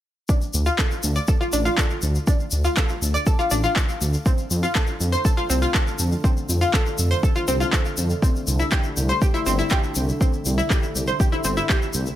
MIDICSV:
0, 0, Header, 1, 5, 480
1, 0, Start_track
1, 0, Key_signature, -1, "minor"
1, 0, Tempo, 495868
1, 281, Time_signature, 4, 2, 24, 8
1, 11768, End_track
2, 0, Start_track
2, 0, Title_t, "Synth pluck"
2, 0, Program_c, 0, 84
2, 281, Note_on_c, 0, 62, 79
2, 368, Note_off_c, 0, 62, 0
2, 640, Note_on_c, 0, 65, 100
2, 755, Note_off_c, 0, 65, 0
2, 760, Note_on_c, 0, 69, 96
2, 875, Note_off_c, 0, 69, 0
2, 1121, Note_on_c, 0, 74, 99
2, 1208, Note_off_c, 0, 74, 0
2, 1241, Note_on_c, 0, 69, 78
2, 1355, Note_off_c, 0, 69, 0
2, 1361, Note_on_c, 0, 65, 96
2, 1413, Note_off_c, 0, 65, 0
2, 1481, Note_on_c, 0, 62, 94
2, 1595, Note_off_c, 0, 62, 0
2, 1600, Note_on_c, 0, 65, 99
2, 1715, Note_off_c, 0, 65, 0
2, 1721, Note_on_c, 0, 69, 99
2, 1835, Note_off_c, 0, 69, 0
2, 2200, Note_on_c, 0, 62, 79
2, 2288, Note_off_c, 0, 62, 0
2, 2561, Note_on_c, 0, 65, 97
2, 2675, Note_off_c, 0, 65, 0
2, 2680, Note_on_c, 0, 69, 95
2, 2795, Note_off_c, 0, 69, 0
2, 3040, Note_on_c, 0, 74, 100
2, 3128, Note_off_c, 0, 74, 0
2, 3161, Note_on_c, 0, 69, 83
2, 3275, Note_off_c, 0, 69, 0
2, 3280, Note_on_c, 0, 65, 102
2, 3333, Note_off_c, 0, 65, 0
2, 3399, Note_on_c, 0, 62, 97
2, 3514, Note_off_c, 0, 62, 0
2, 3520, Note_on_c, 0, 65, 102
2, 3635, Note_off_c, 0, 65, 0
2, 3641, Note_on_c, 0, 69, 99
2, 3755, Note_off_c, 0, 69, 0
2, 4120, Note_on_c, 0, 60, 78
2, 4208, Note_off_c, 0, 60, 0
2, 4481, Note_on_c, 0, 65, 96
2, 4595, Note_off_c, 0, 65, 0
2, 4600, Note_on_c, 0, 69, 94
2, 4715, Note_off_c, 0, 69, 0
2, 4960, Note_on_c, 0, 72, 100
2, 5047, Note_off_c, 0, 72, 0
2, 5080, Note_on_c, 0, 69, 81
2, 5195, Note_off_c, 0, 69, 0
2, 5201, Note_on_c, 0, 65, 99
2, 5253, Note_off_c, 0, 65, 0
2, 5320, Note_on_c, 0, 60, 96
2, 5435, Note_off_c, 0, 60, 0
2, 5441, Note_on_c, 0, 65, 101
2, 5555, Note_off_c, 0, 65, 0
2, 5560, Note_on_c, 0, 69, 103
2, 5675, Note_off_c, 0, 69, 0
2, 6040, Note_on_c, 0, 60, 81
2, 6128, Note_off_c, 0, 60, 0
2, 6400, Note_on_c, 0, 65, 99
2, 6515, Note_off_c, 0, 65, 0
2, 6520, Note_on_c, 0, 69, 100
2, 6635, Note_off_c, 0, 69, 0
2, 6881, Note_on_c, 0, 72, 100
2, 6968, Note_off_c, 0, 72, 0
2, 7000, Note_on_c, 0, 69, 83
2, 7115, Note_off_c, 0, 69, 0
2, 7121, Note_on_c, 0, 65, 97
2, 7173, Note_off_c, 0, 65, 0
2, 7240, Note_on_c, 0, 60, 97
2, 7355, Note_off_c, 0, 60, 0
2, 7360, Note_on_c, 0, 65, 104
2, 7474, Note_off_c, 0, 65, 0
2, 7480, Note_on_c, 0, 69, 100
2, 7595, Note_off_c, 0, 69, 0
2, 7960, Note_on_c, 0, 60, 81
2, 8048, Note_off_c, 0, 60, 0
2, 8320, Note_on_c, 0, 64, 96
2, 8434, Note_off_c, 0, 64, 0
2, 8440, Note_on_c, 0, 67, 99
2, 8555, Note_off_c, 0, 67, 0
2, 8801, Note_on_c, 0, 72, 101
2, 8888, Note_off_c, 0, 72, 0
2, 8921, Note_on_c, 0, 67, 82
2, 9035, Note_off_c, 0, 67, 0
2, 9041, Note_on_c, 0, 64, 100
2, 9093, Note_off_c, 0, 64, 0
2, 9160, Note_on_c, 0, 60, 99
2, 9275, Note_off_c, 0, 60, 0
2, 9280, Note_on_c, 0, 64, 103
2, 9394, Note_off_c, 0, 64, 0
2, 9400, Note_on_c, 0, 67, 102
2, 9515, Note_off_c, 0, 67, 0
2, 9880, Note_on_c, 0, 60, 82
2, 9968, Note_off_c, 0, 60, 0
2, 10240, Note_on_c, 0, 64, 98
2, 10354, Note_off_c, 0, 64, 0
2, 10361, Note_on_c, 0, 67, 99
2, 10475, Note_off_c, 0, 67, 0
2, 10721, Note_on_c, 0, 72, 97
2, 10808, Note_off_c, 0, 72, 0
2, 10840, Note_on_c, 0, 67, 81
2, 10955, Note_off_c, 0, 67, 0
2, 10961, Note_on_c, 0, 64, 96
2, 11013, Note_off_c, 0, 64, 0
2, 11080, Note_on_c, 0, 60, 98
2, 11195, Note_off_c, 0, 60, 0
2, 11200, Note_on_c, 0, 64, 102
2, 11314, Note_off_c, 0, 64, 0
2, 11319, Note_on_c, 0, 67, 101
2, 11434, Note_off_c, 0, 67, 0
2, 11768, End_track
3, 0, Start_track
3, 0, Title_t, "Synth drone"
3, 0, Program_c, 1, 95
3, 280, Note_on_c, 1, 50, 77
3, 280, Note_on_c, 1, 57, 74
3, 11768, Note_off_c, 1, 50, 0
3, 11768, Note_off_c, 1, 57, 0
3, 11768, End_track
4, 0, Start_track
4, 0, Title_t, "Detuned saw bass"
4, 0, Program_c, 2, 39
4, 521, Note_on_c, 2, 38, 94
4, 669, Note_off_c, 2, 38, 0
4, 1002, Note_on_c, 2, 38, 86
4, 1149, Note_off_c, 2, 38, 0
4, 1480, Note_on_c, 2, 33, 92
4, 1628, Note_off_c, 2, 33, 0
4, 1960, Note_on_c, 2, 38, 91
4, 2108, Note_off_c, 2, 38, 0
4, 2441, Note_on_c, 2, 38, 93
4, 2588, Note_off_c, 2, 38, 0
4, 2920, Note_on_c, 2, 38, 86
4, 3068, Note_off_c, 2, 38, 0
4, 3400, Note_on_c, 2, 33, 92
4, 3548, Note_off_c, 2, 33, 0
4, 3881, Note_on_c, 2, 38, 90
4, 4028, Note_off_c, 2, 38, 0
4, 4361, Note_on_c, 2, 41, 96
4, 4508, Note_off_c, 2, 41, 0
4, 4841, Note_on_c, 2, 41, 83
4, 4989, Note_off_c, 2, 41, 0
4, 5321, Note_on_c, 2, 36, 91
4, 5468, Note_off_c, 2, 36, 0
4, 5800, Note_on_c, 2, 41, 89
4, 5948, Note_off_c, 2, 41, 0
4, 6280, Note_on_c, 2, 41, 96
4, 6428, Note_off_c, 2, 41, 0
4, 6761, Note_on_c, 2, 41, 83
4, 6908, Note_off_c, 2, 41, 0
4, 7241, Note_on_c, 2, 36, 93
4, 7388, Note_off_c, 2, 36, 0
4, 7721, Note_on_c, 2, 41, 90
4, 7868, Note_off_c, 2, 41, 0
4, 8201, Note_on_c, 2, 36, 95
4, 8349, Note_off_c, 2, 36, 0
4, 8681, Note_on_c, 2, 36, 86
4, 8828, Note_off_c, 2, 36, 0
4, 9161, Note_on_c, 2, 31, 93
4, 9308, Note_off_c, 2, 31, 0
4, 9641, Note_on_c, 2, 36, 87
4, 9789, Note_off_c, 2, 36, 0
4, 10120, Note_on_c, 2, 36, 94
4, 10268, Note_off_c, 2, 36, 0
4, 10601, Note_on_c, 2, 36, 86
4, 10748, Note_off_c, 2, 36, 0
4, 11080, Note_on_c, 2, 31, 93
4, 11228, Note_off_c, 2, 31, 0
4, 11561, Note_on_c, 2, 36, 89
4, 11708, Note_off_c, 2, 36, 0
4, 11768, End_track
5, 0, Start_track
5, 0, Title_t, "Drums"
5, 278, Note_on_c, 9, 82, 44
5, 281, Note_on_c, 9, 36, 110
5, 375, Note_off_c, 9, 82, 0
5, 377, Note_off_c, 9, 36, 0
5, 400, Note_on_c, 9, 82, 26
5, 496, Note_off_c, 9, 82, 0
5, 521, Note_on_c, 9, 82, 90
5, 617, Note_off_c, 9, 82, 0
5, 638, Note_on_c, 9, 82, 35
5, 735, Note_off_c, 9, 82, 0
5, 760, Note_on_c, 9, 36, 109
5, 761, Note_on_c, 9, 39, 104
5, 761, Note_on_c, 9, 82, 46
5, 857, Note_off_c, 9, 36, 0
5, 858, Note_off_c, 9, 39, 0
5, 858, Note_off_c, 9, 82, 0
5, 883, Note_on_c, 9, 82, 24
5, 980, Note_off_c, 9, 82, 0
5, 998, Note_on_c, 9, 82, 90
5, 1095, Note_off_c, 9, 82, 0
5, 1119, Note_on_c, 9, 82, 39
5, 1216, Note_off_c, 9, 82, 0
5, 1234, Note_on_c, 9, 82, 52
5, 1241, Note_on_c, 9, 36, 110
5, 1331, Note_off_c, 9, 82, 0
5, 1337, Note_off_c, 9, 36, 0
5, 1366, Note_on_c, 9, 82, 23
5, 1463, Note_off_c, 9, 82, 0
5, 1478, Note_on_c, 9, 82, 95
5, 1574, Note_off_c, 9, 82, 0
5, 1603, Note_on_c, 9, 82, 39
5, 1700, Note_off_c, 9, 82, 0
5, 1720, Note_on_c, 9, 36, 110
5, 1721, Note_on_c, 9, 39, 101
5, 1725, Note_on_c, 9, 82, 52
5, 1817, Note_off_c, 9, 36, 0
5, 1818, Note_off_c, 9, 39, 0
5, 1822, Note_off_c, 9, 82, 0
5, 1838, Note_on_c, 9, 82, 26
5, 1935, Note_off_c, 9, 82, 0
5, 1954, Note_on_c, 9, 82, 83
5, 2051, Note_off_c, 9, 82, 0
5, 2081, Note_on_c, 9, 82, 38
5, 2177, Note_off_c, 9, 82, 0
5, 2199, Note_on_c, 9, 82, 53
5, 2200, Note_on_c, 9, 36, 121
5, 2296, Note_off_c, 9, 82, 0
5, 2297, Note_off_c, 9, 36, 0
5, 2319, Note_on_c, 9, 82, 24
5, 2416, Note_off_c, 9, 82, 0
5, 2429, Note_on_c, 9, 82, 82
5, 2526, Note_off_c, 9, 82, 0
5, 2559, Note_on_c, 9, 82, 41
5, 2656, Note_off_c, 9, 82, 0
5, 2676, Note_on_c, 9, 82, 53
5, 2680, Note_on_c, 9, 36, 113
5, 2680, Note_on_c, 9, 39, 105
5, 2773, Note_off_c, 9, 82, 0
5, 2777, Note_off_c, 9, 36, 0
5, 2777, Note_off_c, 9, 39, 0
5, 2797, Note_on_c, 9, 82, 26
5, 2894, Note_off_c, 9, 82, 0
5, 2926, Note_on_c, 9, 82, 93
5, 3023, Note_off_c, 9, 82, 0
5, 3046, Note_on_c, 9, 82, 41
5, 3143, Note_off_c, 9, 82, 0
5, 3159, Note_on_c, 9, 82, 54
5, 3160, Note_on_c, 9, 36, 117
5, 3256, Note_off_c, 9, 82, 0
5, 3257, Note_off_c, 9, 36, 0
5, 3284, Note_on_c, 9, 82, 27
5, 3381, Note_off_c, 9, 82, 0
5, 3396, Note_on_c, 9, 82, 94
5, 3493, Note_off_c, 9, 82, 0
5, 3520, Note_on_c, 9, 82, 35
5, 3617, Note_off_c, 9, 82, 0
5, 3641, Note_on_c, 9, 36, 115
5, 3641, Note_on_c, 9, 39, 102
5, 3648, Note_on_c, 9, 82, 51
5, 3737, Note_off_c, 9, 39, 0
5, 3738, Note_off_c, 9, 36, 0
5, 3745, Note_off_c, 9, 82, 0
5, 3764, Note_on_c, 9, 82, 27
5, 3861, Note_off_c, 9, 82, 0
5, 3885, Note_on_c, 9, 82, 91
5, 3982, Note_off_c, 9, 82, 0
5, 4002, Note_on_c, 9, 82, 38
5, 4098, Note_off_c, 9, 82, 0
5, 4120, Note_on_c, 9, 82, 55
5, 4121, Note_on_c, 9, 36, 118
5, 4217, Note_off_c, 9, 36, 0
5, 4217, Note_off_c, 9, 82, 0
5, 4237, Note_on_c, 9, 82, 27
5, 4334, Note_off_c, 9, 82, 0
5, 4363, Note_on_c, 9, 82, 86
5, 4459, Note_off_c, 9, 82, 0
5, 4485, Note_on_c, 9, 82, 38
5, 4582, Note_off_c, 9, 82, 0
5, 4600, Note_on_c, 9, 82, 54
5, 4601, Note_on_c, 9, 36, 118
5, 4601, Note_on_c, 9, 39, 105
5, 4697, Note_off_c, 9, 82, 0
5, 4698, Note_off_c, 9, 36, 0
5, 4698, Note_off_c, 9, 39, 0
5, 4711, Note_on_c, 9, 82, 26
5, 4808, Note_off_c, 9, 82, 0
5, 4846, Note_on_c, 9, 82, 84
5, 4942, Note_off_c, 9, 82, 0
5, 4961, Note_on_c, 9, 82, 39
5, 5057, Note_off_c, 9, 82, 0
5, 5081, Note_on_c, 9, 36, 116
5, 5084, Note_on_c, 9, 82, 56
5, 5177, Note_off_c, 9, 36, 0
5, 5180, Note_off_c, 9, 82, 0
5, 5201, Note_on_c, 9, 82, 26
5, 5298, Note_off_c, 9, 82, 0
5, 5326, Note_on_c, 9, 82, 102
5, 5423, Note_off_c, 9, 82, 0
5, 5440, Note_on_c, 9, 82, 37
5, 5537, Note_off_c, 9, 82, 0
5, 5560, Note_on_c, 9, 36, 120
5, 5561, Note_on_c, 9, 39, 100
5, 5565, Note_on_c, 9, 82, 48
5, 5657, Note_off_c, 9, 36, 0
5, 5658, Note_off_c, 9, 39, 0
5, 5662, Note_off_c, 9, 82, 0
5, 5685, Note_on_c, 9, 82, 26
5, 5782, Note_off_c, 9, 82, 0
5, 5795, Note_on_c, 9, 82, 91
5, 5892, Note_off_c, 9, 82, 0
5, 5920, Note_on_c, 9, 82, 39
5, 6016, Note_off_c, 9, 82, 0
5, 6040, Note_on_c, 9, 36, 120
5, 6044, Note_on_c, 9, 82, 52
5, 6137, Note_off_c, 9, 36, 0
5, 6141, Note_off_c, 9, 82, 0
5, 6166, Note_on_c, 9, 82, 26
5, 6262, Note_off_c, 9, 82, 0
5, 6286, Note_on_c, 9, 82, 100
5, 6383, Note_off_c, 9, 82, 0
5, 6403, Note_on_c, 9, 82, 38
5, 6500, Note_off_c, 9, 82, 0
5, 6520, Note_on_c, 9, 36, 117
5, 6521, Note_on_c, 9, 39, 98
5, 6527, Note_on_c, 9, 82, 50
5, 6617, Note_off_c, 9, 36, 0
5, 6618, Note_off_c, 9, 39, 0
5, 6624, Note_off_c, 9, 82, 0
5, 6641, Note_on_c, 9, 82, 25
5, 6738, Note_off_c, 9, 82, 0
5, 6758, Note_on_c, 9, 82, 94
5, 6855, Note_off_c, 9, 82, 0
5, 6884, Note_on_c, 9, 82, 37
5, 6981, Note_off_c, 9, 82, 0
5, 7000, Note_on_c, 9, 36, 114
5, 7006, Note_on_c, 9, 82, 45
5, 7097, Note_off_c, 9, 36, 0
5, 7103, Note_off_c, 9, 82, 0
5, 7121, Note_on_c, 9, 82, 26
5, 7218, Note_off_c, 9, 82, 0
5, 7240, Note_on_c, 9, 82, 97
5, 7337, Note_off_c, 9, 82, 0
5, 7364, Note_on_c, 9, 82, 40
5, 7461, Note_off_c, 9, 82, 0
5, 7480, Note_on_c, 9, 36, 114
5, 7480, Note_on_c, 9, 39, 101
5, 7488, Note_on_c, 9, 82, 49
5, 7577, Note_off_c, 9, 36, 0
5, 7577, Note_off_c, 9, 39, 0
5, 7585, Note_off_c, 9, 82, 0
5, 7601, Note_on_c, 9, 82, 27
5, 7698, Note_off_c, 9, 82, 0
5, 7716, Note_on_c, 9, 82, 96
5, 7813, Note_off_c, 9, 82, 0
5, 7838, Note_on_c, 9, 82, 36
5, 7935, Note_off_c, 9, 82, 0
5, 7960, Note_on_c, 9, 36, 112
5, 7969, Note_on_c, 9, 82, 50
5, 8057, Note_off_c, 9, 36, 0
5, 8066, Note_off_c, 9, 82, 0
5, 8091, Note_on_c, 9, 82, 27
5, 8188, Note_off_c, 9, 82, 0
5, 8202, Note_on_c, 9, 82, 90
5, 8299, Note_off_c, 9, 82, 0
5, 8321, Note_on_c, 9, 82, 34
5, 8418, Note_off_c, 9, 82, 0
5, 8436, Note_on_c, 9, 82, 48
5, 8440, Note_on_c, 9, 36, 111
5, 8441, Note_on_c, 9, 39, 92
5, 8533, Note_off_c, 9, 82, 0
5, 8537, Note_off_c, 9, 36, 0
5, 8537, Note_off_c, 9, 39, 0
5, 8549, Note_on_c, 9, 82, 25
5, 8646, Note_off_c, 9, 82, 0
5, 8682, Note_on_c, 9, 82, 93
5, 8778, Note_off_c, 9, 82, 0
5, 8800, Note_on_c, 9, 82, 35
5, 8897, Note_off_c, 9, 82, 0
5, 8921, Note_on_c, 9, 36, 112
5, 8923, Note_on_c, 9, 82, 51
5, 9017, Note_off_c, 9, 36, 0
5, 9019, Note_off_c, 9, 82, 0
5, 9046, Note_on_c, 9, 82, 27
5, 9143, Note_off_c, 9, 82, 0
5, 9160, Note_on_c, 9, 82, 82
5, 9256, Note_off_c, 9, 82, 0
5, 9283, Note_on_c, 9, 82, 34
5, 9379, Note_off_c, 9, 82, 0
5, 9387, Note_on_c, 9, 82, 50
5, 9401, Note_on_c, 9, 36, 113
5, 9401, Note_on_c, 9, 39, 93
5, 9484, Note_off_c, 9, 82, 0
5, 9497, Note_off_c, 9, 36, 0
5, 9497, Note_off_c, 9, 39, 0
5, 9520, Note_on_c, 9, 82, 24
5, 9616, Note_off_c, 9, 82, 0
5, 9632, Note_on_c, 9, 82, 91
5, 9729, Note_off_c, 9, 82, 0
5, 9766, Note_on_c, 9, 82, 35
5, 9862, Note_off_c, 9, 82, 0
5, 9880, Note_on_c, 9, 36, 109
5, 9885, Note_on_c, 9, 82, 49
5, 9977, Note_off_c, 9, 36, 0
5, 9982, Note_off_c, 9, 82, 0
5, 9998, Note_on_c, 9, 82, 25
5, 10095, Note_off_c, 9, 82, 0
5, 10118, Note_on_c, 9, 82, 85
5, 10215, Note_off_c, 9, 82, 0
5, 10247, Note_on_c, 9, 82, 36
5, 10343, Note_off_c, 9, 82, 0
5, 10360, Note_on_c, 9, 36, 112
5, 10360, Note_on_c, 9, 39, 94
5, 10369, Note_on_c, 9, 82, 44
5, 10457, Note_off_c, 9, 36, 0
5, 10457, Note_off_c, 9, 39, 0
5, 10466, Note_off_c, 9, 82, 0
5, 10483, Note_on_c, 9, 82, 25
5, 10580, Note_off_c, 9, 82, 0
5, 10607, Note_on_c, 9, 82, 89
5, 10704, Note_off_c, 9, 82, 0
5, 10717, Note_on_c, 9, 82, 38
5, 10814, Note_off_c, 9, 82, 0
5, 10840, Note_on_c, 9, 36, 112
5, 10843, Note_on_c, 9, 82, 53
5, 10937, Note_off_c, 9, 36, 0
5, 10940, Note_off_c, 9, 82, 0
5, 10961, Note_on_c, 9, 82, 23
5, 11058, Note_off_c, 9, 82, 0
5, 11076, Note_on_c, 9, 82, 90
5, 11172, Note_off_c, 9, 82, 0
5, 11198, Note_on_c, 9, 82, 34
5, 11295, Note_off_c, 9, 82, 0
5, 11320, Note_on_c, 9, 36, 112
5, 11320, Note_on_c, 9, 39, 94
5, 11323, Note_on_c, 9, 82, 44
5, 11417, Note_off_c, 9, 36, 0
5, 11417, Note_off_c, 9, 39, 0
5, 11420, Note_off_c, 9, 82, 0
5, 11443, Note_on_c, 9, 82, 24
5, 11540, Note_off_c, 9, 82, 0
5, 11553, Note_on_c, 9, 82, 88
5, 11649, Note_off_c, 9, 82, 0
5, 11676, Note_on_c, 9, 82, 38
5, 11768, Note_off_c, 9, 82, 0
5, 11768, End_track
0, 0, End_of_file